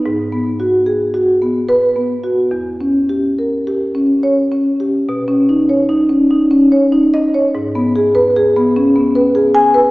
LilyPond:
\new Staff \with { instrumentName = "Marimba" } { \time 3/4 \key b \major \tempo 4 = 73 << { r2 b'8 r8 | r2 cis''8 r8 | r2 r8 dis''8 | r2 r8 gis''8 | } \\ { \tuplet 3/2 { gis,8 b8 fis'8 gis'8 fis'8 b8~ b8 b8 fis'8 } | \tuplet 3/2 { e,8 cis'8 g'8 ais'8 g'8 cis'8~ cis'8 cis'8 g'8 } | b,16 cis'16 dis'16 cis''16 dis'16 cis'16 dis'16 cis'16 cis''16 dis'8 cis''16 | gis,16 b16 gis'16 b'16 gis'16 b16 cis'16 b16 b'16 gis'8 b'16 | } >> }